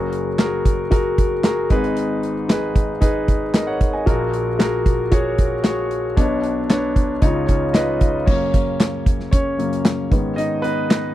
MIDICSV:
0, 0, Header, 1, 3, 480
1, 0, Start_track
1, 0, Key_signature, 6, "major"
1, 0, Tempo, 525855
1, 1796, Time_signature, 4, 2, 24, 8
1, 10172, End_track
2, 0, Start_track
2, 0, Title_t, "Grand piano"
2, 0, Program_c, 0, 0
2, 0, Note_on_c, 0, 30, 57
2, 0, Note_on_c, 0, 42, 54
2, 0, Note_on_c, 0, 66, 69
2, 0, Note_on_c, 0, 68, 60
2, 0, Note_on_c, 0, 70, 68
2, 33, Control_c, 0, 64, 127
2, 250, Note_off_c, 0, 66, 0
2, 252, Note_off_c, 0, 68, 0
2, 256, Note_off_c, 0, 70, 0
2, 352, Note_on_c, 0, 66, 68
2, 362, Note_on_c, 0, 68, 62
2, 366, Note_on_c, 0, 70, 77
2, 728, Note_off_c, 0, 66, 0
2, 733, Note_off_c, 0, 68, 0
2, 735, Note_off_c, 0, 70, 0
2, 828, Note_on_c, 0, 66, 69
2, 835, Note_on_c, 0, 68, 62
2, 840, Note_on_c, 0, 70, 76
2, 1207, Note_off_c, 0, 66, 0
2, 1210, Note_off_c, 0, 68, 0
2, 1212, Note_off_c, 0, 70, 0
2, 1312, Note_on_c, 0, 66, 70
2, 1319, Note_on_c, 0, 68, 68
2, 1322, Note_on_c, 0, 70, 80
2, 1522, Note_off_c, 0, 30, 0
2, 1523, Note_off_c, 0, 42, 0
2, 1546, Note_off_c, 0, 68, 0
2, 1553, Note_on_c, 0, 63, 75
2, 1554, Note_off_c, 0, 66, 0
2, 1559, Note_off_c, 0, 70, 0
2, 1559, Note_on_c, 0, 32, 62
2, 1560, Note_on_c, 0, 44, 61
2, 1560, Note_on_c, 0, 68, 70
2, 1568, Control_c, 0, 64, 0
2, 1568, Note_on_c, 0, 71, 87
2, 1753, Control_c, 0, 64, 127
2, 2130, Note_off_c, 0, 63, 0
2, 2134, Note_off_c, 0, 68, 0
2, 2138, Note_off_c, 0, 71, 0
2, 2267, Note_on_c, 0, 63, 68
2, 2276, Note_on_c, 0, 68, 69
2, 2280, Note_on_c, 0, 71, 80
2, 2646, Note_off_c, 0, 63, 0
2, 2650, Note_off_c, 0, 68, 0
2, 2653, Note_off_c, 0, 71, 0
2, 2743, Note_on_c, 0, 63, 69
2, 2749, Note_on_c, 0, 68, 70
2, 2757, Note_on_c, 0, 71, 80
2, 2997, Note_off_c, 0, 71, 0
2, 3124, Note_off_c, 0, 63, 0
2, 3127, Note_off_c, 0, 68, 0
2, 3234, Note_on_c, 0, 75, 58
2, 3239, Note_on_c, 0, 70, 50
2, 3349, Note_off_c, 0, 75, 0
2, 3350, Note_on_c, 0, 78, 64
2, 3352, Note_off_c, 0, 70, 0
2, 3353, Note_on_c, 0, 73, 56
2, 3441, Note_off_c, 0, 32, 0
2, 3442, Note_off_c, 0, 44, 0
2, 3581, Note_off_c, 0, 78, 0
2, 3583, Note_off_c, 0, 73, 0
2, 3591, Note_on_c, 0, 80, 56
2, 3599, Note_on_c, 0, 75, 50
2, 3708, Note_on_c, 0, 66, 71
2, 3710, Note_on_c, 0, 46, 63
2, 3711, Note_on_c, 0, 68, 63
2, 3712, Note_on_c, 0, 34, 62
2, 3717, Note_on_c, 0, 70, 77
2, 3727, Control_c, 0, 64, 0
2, 3822, Note_off_c, 0, 80, 0
2, 3826, Note_off_c, 0, 75, 0
2, 3875, Control_c, 0, 64, 127
2, 4086, Note_off_c, 0, 66, 0
2, 4088, Note_off_c, 0, 68, 0
2, 4091, Note_off_c, 0, 70, 0
2, 4190, Note_on_c, 0, 66, 74
2, 4198, Note_on_c, 0, 68, 64
2, 4202, Note_on_c, 0, 70, 78
2, 4567, Note_off_c, 0, 66, 0
2, 4571, Note_off_c, 0, 68, 0
2, 4573, Note_off_c, 0, 70, 0
2, 4670, Note_on_c, 0, 66, 74
2, 4676, Note_on_c, 0, 68, 69
2, 4684, Note_on_c, 0, 73, 75
2, 5048, Note_off_c, 0, 66, 0
2, 5051, Note_off_c, 0, 68, 0
2, 5054, Note_off_c, 0, 73, 0
2, 5150, Note_on_c, 0, 66, 69
2, 5155, Note_on_c, 0, 68, 65
2, 5162, Note_on_c, 0, 73, 75
2, 5527, Note_off_c, 0, 66, 0
2, 5530, Note_off_c, 0, 68, 0
2, 5534, Note_off_c, 0, 73, 0
2, 5597, Note_off_c, 0, 46, 0
2, 5598, Note_off_c, 0, 34, 0
2, 5628, Note_on_c, 0, 62, 67
2, 5634, Note_on_c, 0, 71, 59
2, 5635, Note_on_c, 0, 47, 58
2, 5636, Note_on_c, 0, 35, 62
2, 5639, Note_on_c, 0, 73, 74
2, 5648, Control_c, 0, 64, 0
2, 5816, Control_c, 0, 64, 127
2, 6006, Note_off_c, 0, 62, 0
2, 6009, Note_off_c, 0, 71, 0
2, 6012, Note_off_c, 0, 73, 0
2, 6113, Note_on_c, 0, 62, 73
2, 6117, Note_on_c, 0, 71, 63
2, 6122, Note_on_c, 0, 73, 77
2, 6489, Note_off_c, 0, 62, 0
2, 6491, Note_off_c, 0, 71, 0
2, 6493, Note_off_c, 0, 73, 0
2, 6559, Note_off_c, 0, 35, 0
2, 6559, Note_off_c, 0, 47, 0
2, 6585, Note_on_c, 0, 63, 67
2, 6589, Note_on_c, 0, 49, 62
2, 6591, Note_on_c, 0, 37, 62
2, 6592, Note_on_c, 0, 65, 62
2, 6596, Note_on_c, 0, 73, 77
2, 6608, Control_c, 0, 64, 0
2, 6788, Control_c, 0, 64, 127
2, 6803, Note_off_c, 0, 73, 0
2, 6816, Note_on_c, 0, 73, 63
2, 6839, Note_on_c, 0, 61, 50
2, 6964, Note_off_c, 0, 63, 0
2, 6968, Note_off_c, 0, 65, 0
2, 7059, Note_on_c, 0, 75, 71
2, 7061, Note_off_c, 0, 61, 0
2, 7065, Note_on_c, 0, 63, 73
2, 7073, Note_off_c, 0, 73, 0
2, 7074, Note_on_c, 0, 65, 64
2, 7079, Note_on_c, 0, 71, 78
2, 7449, Note_off_c, 0, 65, 0
2, 7452, Note_off_c, 0, 71, 0
2, 7513, Note_off_c, 0, 75, 0
2, 7515, Note_off_c, 0, 49, 0
2, 7516, Note_off_c, 0, 37, 0
2, 7524, Note_off_c, 0, 63, 0
2, 7541, Note_on_c, 0, 73, 69
2, 7547, Note_on_c, 0, 42, 46
2, 7553, Note_on_c, 0, 49, 46
2, 7560, Note_on_c, 0, 58, 53
2, 7561, Note_on_c, 0, 61, 56
2, 7566, Control_c, 0, 64, 0
2, 7751, Control_c, 0, 64, 127
2, 7870, Note_off_c, 0, 42, 0
2, 7873, Note_off_c, 0, 49, 0
2, 7877, Note_off_c, 0, 58, 0
2, 8481, Note_off_c, 0, 61, 0
2, 8488, Note_off_c, 0, 73, 0
2, 8502, Note_on_c, 0, 73, 74
2, 8522, Note_on_c, 0, 61, 59
2, 8748, Note_on_c, 0, 42, 44
2, 8753, Note_on_c, 0, 49, 38
2, 8755, Note_on_c, 0, 58, 48
2, 8967, Note_off_c, 0, 42, 0
2, 8970, Note_off_c, 0, 49, 0
2, 8971, Note_off_c, 0, 58, 0
2, 9227, Note_on_c, 0, 44, 50
2, 9235, Note_on_c, 0, 51, 46
2, 9238, Note_on_c, 0, 59, 55
2, 9247, Control_c, 0, 64, 0
2, 9416, Control_c, 0, 64, 127
2, 9441, Note_off_c, 0, 61, 0
2, 9458, Note_on_c, 0, 75, 78
2, 9476, Note_on_c, 0, 63, 64
2, 9496, Note_off_c, 0, 73, 0
2, 9695, Note_on_c, 0, 71, 94
2, 9698, Note_off_c, 0, 63, 0
2, 9701, Note_off_c, 0, 59, 0
2, 9713, Note_off_c, 0, 75, 0
2, 9715, Note_on_c, 0, 59, 61
2, 10172, Note_off_c, 0, 44, 0
2, 10172, Note_off_c, 0, 51, 0
2, 10172, Note_off_c, 0, 59, 0
2, 10172, Note_off_c, 0, 71, 0
2, 10172, End_track
3, 0, Start_track
3, 0, Title_t, "Drums"
3, 115, Note_on_c, 9, 42, 58
3, 206, Note_off_c, 9, 42, 0
3, 355, Note_on_c, 9, 38, 91
3, 355, Note_on_c, 9, 42, 71
3, 357, Note_on_c, 9, 39, 72
3, 446, Note_off_c, 9, 38, 0
3, 446, Note_off_c, 9, 42, 0
3, 449, Note_off_c, 9, 39, 0
3, 597, Note_on_c, 9, 36, 77
3, 599, Note_on_c, 9, 42, 67
3, 688, Note_off_c, 9, 36, 0
3, 690, Note_off_c, 9, 42, 0
3, 836, Note_on_c, 9, 42, 81
3, 837, Note_on_c, 9, 36, 83
3, 927, Note_off_c, 9, 42, 0
3, 928, Note_off_c, 9, 36, 0
3, 1079, Note_on_c, 9, 36, 71
3, 1079, Note_on_c, 9, 42, 59
3, 1170, Note_off_c, 9, 42, 0
3, 1171, Note_off_c, 9, 36, 0
3, 1314, Note_on_c, 9, 38, 97
3, 1316, Note_on_c, 9, 42, 77
3, 1317, Note_on_c, 9, 39, 77
3, 1406, Note_off_c, 9, 38, 0
3, 1408, Note_off_c, 9, 39, 0
3, 1408, Note_off_c, 9, 42, 0
3, 1553, Note_on_c, 9, 42, 59
3, 1556, Note_on_c, 9, 36, 90
3, 1644, Note_off_c, 9, 42, 0
3, 1647, Note_off_c, 9, 36, 0
3, 1679, Note_on_c, 9, 42, 47
3, 1770, Note_off_c, 9, 42, 0
3, 1795, Note_on_c, 9, 42, 77
3, 1886, Note_off_c, 9, 42, 0
3, 2038, Note_on_c, 9, 42, 62
3, 2130, Note_off_c, 9, 42, 0
3, 2280, Note_on_c, 9, 38, 97
3, 2280, Note_on_c, 9, 42, 75
3, 2283, Note_on_c, 9, 39, 75
3, 2371, Note_off_c, 9, 38, 0
3, 2371, Note_off_c, 9, 42, 0
3, 2374, Note_off_c, 9, 39, 0
3, 2515, Note_on_c, 9, 36, 77
3, 2517, Note_on_c, 9, 42, 62
3, 2606, Note_off_c, 9, 36, 0
3, 2608, Note_off_c, 9, 42, 0
3, 2753, Note_on_c, 9, 42, 82
3, 2754, Note_on_c, 9, 36, 81
3, 2844, Note_off_c, 9, 42, 0
3, 2846, Note_off_c, 9, 36, 0
3, 2996, Note_on_c, 9, 42, 58
3, 2997, Note_on_c, 9, 36, 73
3, 3087, Note_off_c, 9, 42, 0
3, 3089, Note_off_c, 9, 36, 0
3, 3233, Note_on_c, 9, 38, 96
3, 3235, Note_on_c, 9, 39, 79
3, 3235, Note_on_c, 9, 42, 79
3, 3324, Note_off_c, 9, 38, 0
3, 3326, Note_off_c, 9, 39, 0
3, 3326, Note_off_c, 9, 42, 0
3, 3475, Note_on_c, 9, 42, 61
3, 3476, Note_on_c, 9, 36, 72
3, 3566, Note_off_c, 9, 42, 0
3, 3567, Note_off_c, 9, 36, 0
3, 3716, Note_on_c, 9, 36, 95
3, 3718, Note_on_c, 9, 42, 68
3, 3807, Note_off_c, 9, 36, 0
3, 3810, Note_off_c, 9, 42, 0
3, 3958, Note_on_c, 9, 42, 60
3, 4049, Note_off_c, 9, 42, 0
3, 4200, Note_on_c, 9, 38, 93
3, 4200, Note_on_c, 9, 42, 78
3, 4203, Note_on_c, 9, 39, 79
3, 4291, Note_off_c, 9, 42, 0
3, 4292, Note_off_c, 9, 38, 0
3, 4294, Note_off_c, 9, 39, 0
3, 4435, Note_on_c, 9, 36, 80
3, 4437, Note_on_c, 9, 42, 62
3, 4526, Note_off_c, 9, 36, 0
3, 4529, Note_off_c, 9, 42, 0
3, 4670, Note_on_c, 9, 42, 82
3, 4674, Note_on_c, 9, 36, 83
3, 4762, Note_off_c, 9, 42, 0
3, 4765, Note_off_c, 9, 36, 0
3, 4914, Note_on_c, 9, 42, 62
3, 4917, Note_on_c, 9, 36, 78
3, 5006, Note_off_c, 9, 42, 0
3, 5008, Note_off_c, 9, 36, 0
3, 5151, Note_on_c, 9, 38, 103
3, 5153, Note_on_c, 9, 39, 79
3, 5153, Note_on_c, 9, 42, 76
3, 5242, Note_off_c, 9, 38, 0
3, 5244, Note_off_c, 9, 39, 0
3, 5244, Note_off_c, 9, 42, 0
3, 5394, Note_on_c, 9, 42, 61
3, 5485, Note_off_c, 9, 42, 0
3, 5635, Note_on_c, 9, 36, 94
3, 5636, Note_on_c, 9, 42, 74
3, 5726, Note_off_c, 9, 36, 0
3, 5727, Note_off_c, 9, 42, 0
3, 5874, Note_on_c, 9, 42, 55
3, 5965, Note_off_c, 9, 42, 0
3, 6117, Note_on_c, 9, 38, 92
3, 6117, Note_on_c, 9, 42, 77
3, 6120, Note_on_c, 9, 39, 76
3, 6208, Note_off_c, 9, 42, 0
3, 6209, Note_off_c, 9, 38, 0
3, 6211, Note_off_c, 9, 39, 0
3, 6353, Note_on_c, 9, 36, 76
3, 6357, Note_on_c, 9, 42, 65
3, 6445, Note_off_c, 9, 36, 0
3, 6448, Note_off_c, 9, 42, 0
3, 6588, Note_on_c, 9, 42, 80
3, 6592, Note_on_c, 9, 36, 84
3, 6680, Note_off_c, 9, 42, 0
3, 6683, Note_off_c, 9, 36, 0
3, 6832, Note_on_c, 9, 42, 61
3, 6835, Note_on_c, 9, 36, 72
3, 6923, Note_off_c, 9, 42, 0
3, 6926, Note_off_c, 9, 36, 0
3, 7070, Note_on_c, 9, 38, 103
3, 7072, Note_on_c, 9, 39, 73
3, 7072, Note_on_c, 9, 42, 85
3, 7161, Note_off_c, 9, 38, 0
3, 7163, Note_off_c, 9, 42, 0
3, 7164, Note_off_c, 9, 39, 0
3, 7310, Note_on_c, 9, 42, 62
3, 7313, Note_on_c, 9, 36, 74
3, 7401, Note_off_c, 9, 42, 0
3, 7404, Note_off_c, 9, 36, 0
3, 7553, Note_on_c, 9, 36, 93
3, 7553, Note_on_c, 9, 49, 78
3, 7644, Note_off_c, 9, 49, 0
3, 7645, Note_off_c, 9, 36, 0
3, 7794, Note_on_c, 9, 42, 57
3, 7795, Note_on_c, 9, 36, 74
3, 7885, Note_off_c, 9, 42, 0
3, 7886, Note_off_c, 9, 36, 0
3, 8035, Note_on_c, 9, 38, 98
3, 8035, Note_on_c, 9, 42, 82
3, 8038, Note_on_c, 9, 39, 77
3, 8126, Note_off_c, 9, 42, 0
3, 8127, Note_off_c, 9, 38, 0
3, 8129, Note_off_c, 9, 39, 0
3, 8273, Note_on_c, 9, 36, 77
3, 8277, Note_on_c, 9, 42, 65
3, 8365, Note_off_c, 9, 36, 0
3, 8368, Note_off_c, 9, 42, 0
3, 8396, Note_on_c, 9, 38, 32
3, 8487, Note_off_c, 9, 38, 0
3, 8512, Note_on_c, 9, 42, 88
3, 8513, Note_on_c, 9, 36, 85
3, 8604, Note_off_c, 9, 42, 0
3, 8605, Note_off_c, 9, 36, 0
3, 8759, Note_on_c, 9, 42, 61
3, 8850, Note_off_c, 9, 42, 0
3, 8879, Note_on_c, 9, 42, 52
3, 8971, Note_off_c, 9, 42, 0
3, 8993, Note_on_c, 9, 38, 105
3, 8995, Note_on_c, 9, 39, 79
3, 8995, Note_on_c, 9, 42, 82
3, 9084, Note_off_c, 9, 38, 0
3, 9086, Note_off_c, 9, 42, 0
3, 9087, Note_off_c, 9, 39, 0
3, 9234, Note_on_c, 9, 36, 87
3, 9236, Note_on_c, 9, 42, 61
3, 9325, Note_off_c, 9, 36, 0
3, 9327, Note_off_c, 9, 42, 0
3, 9476, Note_on_c, 9, 42, 72
3, 9567, Note_off_c, 9, 42, 0
3, 9714, Note_on_c, 9, 42, 60
3, 9805, Note_off_c, 9, 42, 0
3, 9956, Note_on_c, 9, 38, 99
3, 9956, Note_on_c, 9, 42, 74
3, 9959, Note_on_c, 9, 39, 78
3, 10047, Note_off_c, 9, 42, 0
3, 10048, Note_off_c, 9, 38, 0
3, 10050, Note_off_c, 9, 39, 0
3, 10172, End_track
0, 0, End_of_file